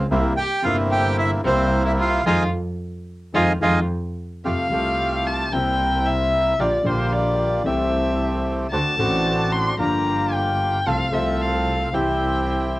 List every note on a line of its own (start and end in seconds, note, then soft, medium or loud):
0.11 0.33 C2 loud
0.11 0.34 C2 medium
0.11 0.34 C3 medium
0.11 0.34 G3 medium
0.11 0.33 A#3 medium
0.11 0.34 A#3 medium
0.11 0.33 C4 medium
0.11 0.33 E4 loud
0.11 0.34 E4 medium
0.37 0.63 G4 medium
0.37 0.65 G5 loud
0.62 1.41 G1 medium
0.62 1.41 G2 medium
0.62 1.40 C3 medium
0.62 1.41 G3 medium
0.62 1.41 A#3 medium
0.62 1.41 C4 medium
0.62 1.41 E4 medium
0.62 1.42 E4 medium
0.62 0.76 F4 medium
0.62 0.77 F5 medium
0.91 1.16 G4 medium
0.91 1.17 G5 medium
1.18 1.30 E4 medium
1.18 1.31 E5 loud
1.44 2.22 C2 loud
1.44 2.22 C2 medium
1.44 2.22 C3 medium
1.44 2.22 G3 medium
1.44 2.22 A#3 medium
1.44 2.21 C4 medium
1.44 1.82 C4 medium
1.44 2.22 E4 loud
1.44 2.23 E4 medium
1.44 1.83 C5 medium
1.85 1.91 E4 medium
1.85 1.93 E5 medium
1.99 2.24 F4 medium
1.99 2.25 F5 medium
2.25 2.46 F2 medium
2.25 2.43 D#3 loud
2.25 2.43 F3 medium
2.25 2.43 G#3 medium
2.25 2.43 C4 loud
2.25 2.43 D#4 loud
2.25 2.43 F4 medium
2.25 2.43 F4 loud
2.25 2.43 D#5 medium
2.25 2.44 F5 medium
2.25 2.44 G#5 medium
3.34 3.54 F2 medium
3.34 3.52 D#3 medium
3.34 3.52 F3 medium
3.34 3.51 G#3 medium
3.34 3.52 C4 medium
3.34 3.52 D#4 medium
3.34 3.52 F4 medium
3.34 3.52 D#5 medium
3.34 3.53 F5 medium
3.34 3.52 G#5 medium
3.61 3.82 F2 loud
3.61 3.79 D#3 medium
3.61 3.79 F3 medium
3.61 3.79 G#3 medium
3.61 3.80 C4 medium
3.61 3.80 D#4 medium
3.61 3.80 F4 medium
3.61 3.80 D#5 medium
3.61 3.80 F5 medium
3.61 3.79 G#5 medium
4.44 4.67 F2 soft
4.44 4.67 F2 medium
4.44 4.67 C3 soft
4.44 4.67 F3 medium
4.44 4.67 G3 soft
4.44 4.67 A3 soft
4.44 4.67 A3 medium
4.44 4.67 F4 soft
4.44 4.67 G4 medium
4.44 5.28 F5 medium
4.70 5.48 C2 medium
4.70 5.49 C2 medium
4.70 5.49 C3 medium
4.70 5.48 G3 medium
4.70 5.49 A3 medium
4.70 5.49 F4 medium
4.70 5.50 F4 medium
4.70 5.49 G4 medium
5.27 5.54 A5 medium
5.52 6.54 C2 medium
5.52 6.55 C2 medium
5.52 6.55 C3 medium
5.52 6.54 G3 medium
5.52 6.55 A#3 medium
5.52 6.54 C4 medium
5.52 6.54 E4 medium
5.52 6.56 E4 medium
5.52 6.54 A#4 medium
5.52 6.07 G5 medium
6.05 6.61 E5 medium
6.58 6.82 A#1 medium
6.58 6.82 A#2 medium
6.58 6.81 D3 soft
6.58 6.82 G3 soft
6.58 6.82 A#3 soft
6.58 6.82 A#3 medium
6.58 6.82 F4 medium
6.58 6.82 F4 soft
6.58 6.82 G4 medium
6.58 6.88 D5 medium
6.83 7.61 A#1 medium
6.83 7.62 A#1 medium
6.83 7.62 A#2 medium
6.83 7.61 D3 medium
6.83 7.61 G3 medium
6.83 7.62 A#3 medium
6.83 7.63 F4 medium
6.83 7.63 G4 medium
6.83 7.14 C5 medium
6.87 7.63 F4 medium
7.12 7.67 D5 medium
7.63 8.67 C2 medium
7.63 8.67 C3 medium
7.63 8.66 E3 medium
7.63 8.66 A3 medium
7.63 8.67 A3 medium
7.63 8.67 C4 medium
7.63 8.67 G4 medium
7.63 8.46 E5 medium
7.67 8.68 G4 medium
8.71 8.95 D2 medium
8.71 8.95 D3 medium
8.71 8.95 A3 soft
8.71 8.95 C4 medium
8.71 8.95 C4 soft
8.71 8.95 D4 soft
8.71 8.95 F#4 medium
8.71 8.95 F#4 soft
8.71 9.54 A5 medium
8.97 9.75 A1 medium
8.97 9.75 A2 medium
8.97 9.74 D3 medium
8.97 9.75 A3 medium
8.97 9.75 C4 medium
8.97 9.75 D4 medium
8.97 9.75 F#4 medium
8.97 9.76 F#4 medium
9.52 9.79 C6 medium
9.77 10.81 G1 medium
9.77 10.81 G2 medium
9.77 10.80 F3 medium
9.77 10.80 A#3 medium
9.77 10.81 A#3 medium
9.77 10.81 D4 medium
9.77 10.81 F4 medium
9.77 10.81 G4 medium
9.77 10.35 A#5 medium
10.33 10.89 G5 medium
10.86 11.09 C2 medium
10.86 11.09 C3 soft
10.86 11.09 F3 soft
10.86 11.09 A3 soft
10.86 11.09 C4 soft
10.86 11.09 F4 soft
10.86 11.09 A4 medium
10.86 11.10 A4 soft
10.86 11.15 F5 medium
11.10 11.89 C2 medium
11.10 11.89 C3 medium
11.10 11.88 F3 medium
11.10 11.89 A3 medium
11.10 11.89 C4 medium
11.10 11.90 C4 medium
11.10 11.89 F4 medium
11.10 11.90 A4 medium
11.10 11.43 E5 medium
11.14 11.90 A4 medium
11.41 11.95 F5 medium
11.92 12.80 C2 medium
11.92 12.80 C3 medium
11.92 12.80 E3 medium
11.92 12.80 G3 medium
11.92 12.80 C4 medium
11.92 12.80 E4 medium
11.92 12.80 G4 medium
11.92 12.75 G5 medium
11.97 12.80 G4 medium